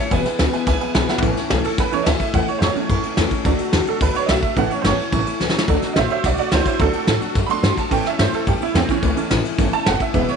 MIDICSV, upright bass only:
0, 0, Header, 1, 3, 480
1, 0, Start_track
1, 0, Key_signature, 3, "major"
1, 0, Tempo, 278552
1, 198, Time_signature, 4, 2, 24, 8
1, 17859, End_track
2, 0, Start_track
2, 0, Title_t, "Upright bass"
2, 0, Program_c, 0, 32
2, 192, Note_on_c, 0, 28, 88
2, 362, Note_off_c, 0, 28, 0
2, 675, Note_on_c, 0, 38, 86
2, 880, Note_off_c, 0, 38, 0
2, 1151, Note_on_c, 0, 37, 87
2, 1357, Note_off_c, 0, 37, 0
2, 1630, Note_on_c, 0, 35, 99
2, 1837, Note_off_c, 0, 35, 0
2, 2118, Note_on_c, 0, 33, 86
2, 2338, Note_off_c, 0, 33, 0
2, 2596, Note_on_c, 0, 35, 96
2, 2822, Note_off_c, 0, 35, 0
2, 3073, Note_on_c, 0, 37, 78
2, 3298, Note_off_c, 0, 37, 0
2, 3553, Note_on_c, 0, 38, 103
2, 3782, Note_off_c, 0, 38, 0
2, 4029, Note_on_c, 0, 40, 99
2, 4249, Note_off_c, 0, 40, 0
2, 4495, Note_on_c, 0, 41, 103
2, 4734, Note_off_c, 0, 41, 0
2, 4990, Note_on_c, 0, 42, 91
2, 5212, Note_off_c, 0, 42, 0
2, 5471, Note_on_c, 0, 40, 107
2, 5694, Note_off_c, 0, 40, 0
2, 5946, Note_on_c, 0, 38, 95
2, 6177, Note_off_c, 0, 38, 0
2, 6420, Note_on_c, 0, 40, 104
2, 6651, Note_off_c, 0, 40, 0
2, 6903, Note_on_c, 0, 38, 85
2, 7127, Note_off_c, 0, 38, 0
2, 7382, Note_on_c, 0, 35, 97
2, 7621, Note_off_c, 0, 35, 0
2, 7869, Note_on_c, 0, 33, 87
2, 8081, Note_off_c, 0, 33, 0
2, 8331, Note_on_c, 0, 31, 96
2, 8569, Note_off_c, 0, 31, 0
2, 8831, Note_on_c, 0, 33, 98
2, 9056, Note_off_c, 0, 33, 0
2, 9304, Note_on_c, 0, 37, 95
2, 9533, Note_off_c, 0, 37, 0
2, 9791, Note_on_c, 0, 38, 85
2, 10021, Note_off_c, 0, 38, 0
2, 10276, Note_on_c, 0, 33, 87
2, 10509, Note_off_c, 0, 33, 0
2, 10752, Note_on_c, 0, 35, 86
2, 10988, Note_off_c, 0, 35, 0
2, 11236, Note_on_c, 0, 37, 102
2, 11461, Note_off_c, 0, 37, 0
2, 11712, Note_on_c, 0, 38, 98
2, 11948, Note_off_c, 0, 38, 0
2, 12197, Note_on_c, 0, 45, 107
2, 12422, Note_off_c, 0, 45, 0
2, 12672, Note_on_c, 0, 42, 86
2, 12900, Note_off_c, 0, 42, 0
2, 13144, Note_on_c, 0, 43, 100
2, 13384, Note_off_c, 0, 43, 0
2, 13637, Note_on_c, 0, 45, 98
2, 13861, Note_off_c, 0, 45, 0
2, 14110, Note_on_c, 0, 43, 95
2, 14336, Note_off_c, 0, 43, 0
2, 14597, Note_on_c, 0, 42, 87
2, 14819, Note_off_c, 0, 42, 0
2, 15065, Note_on_c, 0, 40, 96
2, 15304, Note_off_c, 0, 40, 0
2, 15556, Note_on_c, 0, 37, 90
2, 15783, Note_off_c, 0, 37, 0
2, 16033, Note_on_c, 0, 33, 100
2, 16263, Note_off_c, 0, 33, 0
2, 16517, Note_on_c, 0, 31, 95
2, 16744, Note_off_c, 0, 31, 0
2, 16993, Note_on_c, 0, 30, 94
2, 17228, Note_off_c, 0, 30, 0
2, 17479, Note_on_c, 0, 28, 97
2, 17703, Note_off_c, 0, 28, 0
2, 17859, End_track
3, 0, Start_track
3, 0, Title_t, "Muted upright bass strokes"
3, 430, Note_on_c, 9, 29, 69
3, 602, Note_off_c, 9, 29, 0
3, 1387, Note_on_c, 9, 29, 71
3, 1559, Note_off_c, 9, 29, 0
3, 1864, Note_on_c, 9, 29, 74
3, 2036, Note_off_c, 9, 29, 0
3, 2349, Note_on_c, 9, 29, 73
3, 2521, Note_off_c, 9, 29, 0
3, 2832, Note_on_c, 9, 29, 72
3, 3004, Note_off_c, 9, 29, 0
3, 3314, Note_on_c, 9, 29, 44
3, 3486, Note_off_c, 9, 29, 0
3, 4259, Note_on_c, 9, 29, 77
3, 4431, Note_off_c, 9, 29, 0
3, 4744, Note_on_c, 9, 29, 67
3, 4916, Note_off_c, 9, 29, 0
3, 5223, Note_on_c, 9, 29, 83
3, 5395, Note_off_c, 9, 29, 0
3, 5705, Note_on_c, 9, 29, 77
3, 5877, Note_off_c, 9, 29, 0
3, 7137, Note_on_c, 9, 29, 78
3, 7310, Note_off_c, 9, 29, 0
3, 7631, Note_on_c, 9, 29, 68
3, 7803, Note_off_c, 9, 29, 0
3, 8091, Note_on_c, 9, 29, 75
3, 8264, Note_off_c, 9, 29, 0
3, 8580, Note_on_c, 9, 29, 67
3, 8752, Note_off_c, 9, 29, 0
3, 9067, Note_on_c, 9, 29, 85
3, 9239, Note_off_c, 9, 29, 0
3, 9549, Note_on_c, 9, 29, 44
3, 9721, Note_off_c, 9, 29, 0
3, 10032, Note_on_c, 9, 29, 75
3, 10204, Note_off_c, 9, 29, 0
3, 10997, Note_on_c, 9, 29, 80
3, 11170, Note_off_c, 9, 29, 0
3, 12432, Note_on_c, 9, 29, 71
3, 12605, Note_off_c, 9, 29, 0
3, 12910, Note_on_c, 9, 29, 87
3, 13082, Note_off_c, 9, 29, 0
3, 13871, Note_on_c, 9, 29, 44
3, 14044, Note_off_c, 9, 29, 0
3, 14346, Note_on_c, 9, 29, 68
3, 14519, Note_off_c, 9, 29, 0
3, 14829, Note_on_c, 9, 29, 78
3, 15002, Note_off_c, 9, 29, 0
3, 15793, Note_on_c, 9, 29, 78
3, 15965, Note_off_c, 9, 29, 0
3, 16754, Note_on_c, 9, 29, 84
3, 16927, Note_off_c, 9, 29, 0
3, 17237, Note_on_c, 9, 29, 73
3, 17409, Note_off_c, 9, 29, 0
3, 17714, Note_on_c, 9, 29, 69
3, 17859, Note_off_c, 9, 29, 0
3, 17859, End_track
0, 0, End_of_file